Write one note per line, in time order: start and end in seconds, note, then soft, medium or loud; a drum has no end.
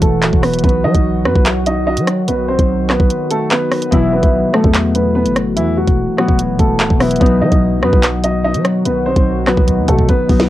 0.00 0.24 E1 loud
0.00 0.60 E3 medium
0.00 7.17 F#3 medium
0.00 0.41 A3 medium
0.00 7.17 F#4 medium
0.00 0.40 A4 medium
0.00 kick loud
0.00 closed hi-hat medium
0.22 0.32 D#1 loud
0.22 clap loud
0.22 closed hi-hat medium
0.33 0.62 E1 loud
0.33 kick loud
0.42 0.62 B3 medium
0.42 0.62 B4 medium
0.42 cross-stick loud
0.42 open hi-hat medium
0.53 closed hi-hat medium
0.58 closed hi-hat medium
0.64 0.85 B1 loud
0.64 3.89 D#3 medium
0.64 0.83 B3 medium
0.64 0.83 B4 medium
0.64 kick loud
0.64 closed hi-hat medium
0.69 closed hi-hat soft
0.84 0.94 F#3 loud
0.84 1.23 D#4 medium
0.84 1.23 D#5 medium
0.94 1.27 B1 loud
0.94 kick medium
0.94 closed hi-hat medium
1.25 1.35 F#2 loud
1.25 1.45 B3 medium
1.25 1.44 B4 medium
1.25 cross-stick loud
1.35 1.99 B1 loud
1.35 kick medium
1.46 clap loud
1.46 closed hi-hat medium
1.66 1.86 D#4 medium
1.66 1.85 D#5 medium
1.66 closed hi-hat medium
1.87 2.06 D#4 medium
1.87 2.06 D#5 medium
1.97 2.29 F#3 loud
1.97 closed hi-hat medium
2.07 cross-stick loud
2.07 closed hi-hat medium
2.28 2.57 B1 loud
2.28 2.47 B3 medium
2.28 2.47 B4 medium
2.28 closed hi-hat medium
2.48 2.87 C4 medium
2.48 2.87 C5 medium
2.59 2.98 B1 loud
2.59 kick medium
2.59 closed hi-hat medium
2.89 3.28 B3 medium
2.89 3.28 B4 medium
2.89 cross-stick medium
2.89 clap medium
3.00 3.10 B1 loud
3.00 kick medium
3.10 closed hi-hat medium
3.31 3.50 A3 medium
3.31 3.50 A4 loud
3.31 closed hi-hat medium
3.51 3.90 B3 medium
3.51 3.90 B4 medium
3.51 clap loud
3.51 closed hi-hat medium
3.72 cross-stick loud
3.72 open hi-hat medium
3.82 closed hi-hat medium
3.91 4.22 E1 loud
3.91 4.52 B2 loud
3.91 7.18 E3 medium
3.91 4.12 E3 medium
3.91 4.53 F#3 medium
3.91 4.12 E4 medium
3.91 6.54 E4 loud
3.91 kick loud
3.91 closed hi-hat medium
4.13 4.52 B3 medium
4.13 4.52 B4 medium
4.23 4.43 B1 loud
4.23 kick medium
4.23 closed hi-hat medium
4.53 6.16 B2 medium
4.53 6.17 F#3 medium
4.53 4.73 A3 medium
4.53 7.88 A3 medium
4.53 4.73 A4 medium
4.53 cross-stick loud
4.64 5.27 E2 loud
4.64 kick medium
4.75 clap loud
4.75 closed hi-hat medium
4.95 5.15 B3 medium
4.95 5.14 B4 medium
4.95 closed hi-hat medium
5.15 5.35 B3 medium
5.15 5.34 B4 medium
5.26 5.58 G1 loud
5.26 closed hi-hat medium
5.36 cross-stick loud
5.36 closed hi-hat medium
5.57 5.86 E2 loud
5.57 5.76 E3 medium
5.57 5.76 E4 medium
5.57 closed hi-hat medium
5.77 6.16 F#3 medium
5.77 6.16 F#4 medium
5.87 6.07 E1 loud
5.87 kick medium
5.87 closed hi-hat medium
6.17 6.98 B2 medium
6.17 6.99 F#3 medium
6.17 6.38 F#3 medium
6.17 9.30 B3 medium
6.17 6.38 F#4 medium
6.17 cross-stick loud
6.29 6.51 E1 loud
6.29 kick medium
6.39 closed hi-hat medium
6.49 6.59 D#1 loud
6.59 6.81 E1 loud
6.59 6.98 A3 medium
6.59 6.98 A4 medium
6.59 kick loud
6.59 closed hi-hat medium
6.80 6.90 D#1 loud
6.80 clap loud
6.80 closed hi-hat medium
6.90 7.20 E1 loud
6.90 kick loud
7.00 7.19 B2 medium
7.00 7.20 F#3 medium
7.00 7.20 B3 medium
7.00 7.15 E4 medium
7.00 7.19 B4 medium
7.00 cross-stick loud
7.00 open hi-hat medium
7.11 closed hi-hat medium
7.16 closed hi-hat medium
7.20 7.43 B1 loud
7.20 7.80 B2 loud
7.20 10.47 D#3 medium
7.20 10.47 F#3 medium
7.20 7.81 F#3 medium
7.20 7.41 B3 medium
7.20 10.47 D#4 medium
7.20 7.83 D#4 loud
7.20 10.46 F#4 medium
7.20 7.40 B4 medium
7.20 kick loud
7.20 closed hi-hat soft
7.26 closed hi-hat soft
7.42 7.51 F#3 loud
7.42 7.81 D#4 medium
7.42 7.80 D#5 medium
7.52 7.84 B1 loud
7.52 kick medium
7.52 closed hi-hat medium
7.81 7.92 F#2 loud
7.81 9.45 B2 medium
7.81 9.46 F#3 medium
7.81 8.02 B3 medium
7.81 10.30 D#4 medium
7.81 8.02 B4 medium
7.81 cross-stick loud
7.93 8.56 B1 loud
7.93 kick medium
8.03 clap loud
8.03 closed hi-hat medium
8.24 8.43 D#4 medium
8.24 8.43 D#5 medium
8.24 closed hi-hat medium
8.44 8.64 D#4 medium
8.44 8.63 D#5 medium
8.54 8.87 F#3 loud
8.54 closed hi-hat medium
8.65 cross-stick loud
8.65 closed hi-hat medium
8.85 9.15 B1 loud
8.85 9.05 B3 medium
8.85 9.04 B4 medium
8.85 closed hi-hat medium
9.06 9.45 C4 medium
9.06 9.45 C5 medium
9.16 9.56 B1 loud
9.16 kick medium
9.16 closed hi-hat medium
9.46 10.27 B2 medium
9.46 10.28 F#3 medium
9.46 9.86 B3 medium
9.46 10.49 F#4 medium
9.46 9.86 B4 medium
9.46 cross-stick loud
9.46 clap medium
9.57 9.79 B1 loud
9.57 kick medium
9.68 kick medium
9.68 closed hi-hat medium
9.78 9.88 D#2 loud
9.88 10.08 B2 loud
9.88 10.08 A3 medium
9.88 10.07 A4 medium
9.88 kick medium
9.88 closed hi-hat medium
9.98 kick medium
10.09 10.48 B3 medium
10.09 10.47 B4 medium
10.09 kick loud
10.09 closed hi-hat medium
10.28 10.49 B1 loud
10.28 10.47 B2 medium
10.28 10.49 F#3 medium
10.28 10.44 D#4 medium
10.28 kick loud
10.28 open hi-hat medium
10.40 snare loud
10.40 closed hi-hat medium